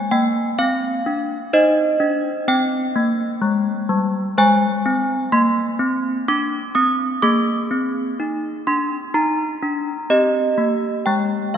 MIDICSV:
0, 0, Header, 1, 2, 480
1, 0, Start_track
1, 0, Tempo, 949367
1, 779, Time_signature, 3, 2, 24, 8
1, 3657, Tempo, 958466
1, 5831, End_track
2, 0, Start_track
2, 0, Title_t, "Handbells"
2, 0, Program_c, 0, 14
2, 0, Note_on_c, 0, 72, 44
2, 58, Note_on_c, 0, 79, 85
2, 59, Note_on_c, 0, 58, 64
2, 250, Note_off_c, 0, 58, 0
2, 287, Note_off_c, 0, 79, 0
2, 296, Note_on_c, 0, 77, 81
2, 297, Note_on_c, 0, 60, 59
2, 490, Note_off_c, 0, 60, 0
2, 537, Note_on_c, 0, 62, 57
2, 730, Note_off_c, 0, 62, 0
2, 760, Note_off_c, 0, 77, 0
2, 762, Note_off_c, 0, 72, 0
2, 775, Note_on_c, 0, 72, 53
2, 776, Note_on_c, 0, 75, 95
2, 777, Note_on_c, 0, 63, 68
2, 970, Note_off_c, 0, 63, 0
2, 1011, Note_on_c, 0, 62, 71
2, 1206, Note_off_c, 0, 62, 0
2, 1238, Note_off_c, 0, 75, 0
2, 1253, Note_on_c, 0, 60, 68
2, 1255, Note_on_c, 0, 79, 96
2, 1446, Note_off_c, 0, 60, 0
2, 1495, Note_on_c, 0, 58, 61
2, 1687, Note_off_c, 0, 58, 0
2, 1727, Note_on_c, 0, 56, 65
2, 1922, Note_off_c, 0, 56, 0
2, 1968, Note_on_c, 0, 55, 67
2, 2162, Note_off_c, 0, 55, 0
2, 2192, Note_off_c, 0, 72, 0
2, 2192, Note_off_c, 0, 79, 0
2, 2213, Note_on_c, 0, 72, 45
2, 2215, Note_on_c, 0, 56, 71
2, 2216, Note_on_c, 0, 80, 105
2, 2406, Note_off_c, 0, 56, 0
2, 2455, Note_on_c, 0, 60, 64
2, 2646, Note_off_c, 0, 60, 0
2, 2675, Note_off_c, 0, 80, 0
2, 2691, Note_on_c, 0, 84, 97
2, 2692, Note_on_c, 0, 58, 68
2, 2885, Note_off_c, 0, 58, 0
2, 2928, Note_on_c, 0, 60, 62
2, 3123, Note_off_c, 0, 60, 0
2, 3154, Note_off_c, 0, 84, 0
2, 3177, Note_on_c, 0, 62, 67
2, 3177, Note_on_c, 0, 86, 95
2, 3368, Note_off_c, 0, 62, 0
2, 3406, Note_off_c, 0, 86, 0
2, 3412, Note_on_c, 0, 87, 91
2, 3414, Note_on_c, 0, 60, 59
2, 3606, Note_off_c, 0, 60, 0
2, 3634, Note_off_c, 0, 72, 0
2, 3644, Note_off_c, 0, 87, 0
2, 3653, Note_on_c, 0, 68, 48
2, 3653, Note_on_c, 0, 86, 105
2, 3654, Note_on_c, 0, 58, 70
2, 3846, Note_off_c, 0, 58, 0
2, 3895, Note_on_c, 0, 60, 60
2, 4087, Note_off_c, 0, 60, 0
2, 4140, Note_on_c, 0, 63, 54
2, 4329, Note_off_c, 0, 63, 0
2, 4353, Note_off_c, 0, 86, 0
2, 4377, Note_on_c, 0, 84, 90
2, 4378, Note_on_c, 0, 62, 58
2, 4567, Note_off_c, 0, 62, 0
2, 4604, Note_off_c, 0, 84, 0
2, 4613, Note_on_c, 0, 63, 61
2, 4614, Note_on_c, 0, 82, 91
2, 4804, Note_off_c, 0, 63, 0
2, 4855, Note_on_c, 0, 62, 56
2, 5046, Note_off_c, 0, 62, 0
2, 5072, Note_off_c, 0, 68, 0
2, 5074, Note_off_c, 0, 82, 0
2, 5092, Note_on_c, 0, 60, 61
2, 5094, Note_on_c, 0, 67, 43
2, 5094, Note_on_c, 0, 75, 91
2, 5284, Note_off_c, 0, 60, 0
2, 5332, Note_on_c, 0, 58, 52
2, 5524, Note_off_c, 0, 58, 0
2, 5554, Note_off_c, 0, 75, 0
2, 5572, Note_on_c, 0, 79, 75
2, 5576, Note_on_c, 0, 56, 56
2, 5768, Note_off_c, 0, 56, 0
2, 5804, Note_off_c, 0, 79, 0
2, 5815, Note_on_c, 0, 77, 62
2, 5831, Note_off_c, 0, 67, 0
2, 5831, Note_off_c, 0, 77, 0
2, 5831, End_track
0, 0, End_of_file